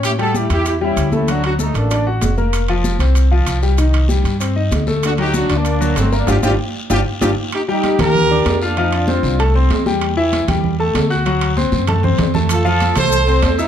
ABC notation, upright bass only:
X:1
M:4/4
L:1/8
Q:1/4=192
K:Dphr
V:1 name="Upright bass" clef=bass
A,,3 =E,,3 D,,2- | D,,3 A,,,3 F,,,2- | F,,,3 C,,3 C,,2- | C,,3 G,,3 D,,2- |
D,,3 D,,3 G,,,2 | G,,, G,,, z2 G,,, z G,,, z | z3 E,,3 F,,2- | F,,3 C,,3 =E,,2- |
=E,,3 E,,3 D,,2- | D,,3 ^F,,3 =F,,2- | F,,3 C,,3 =E,,2 |]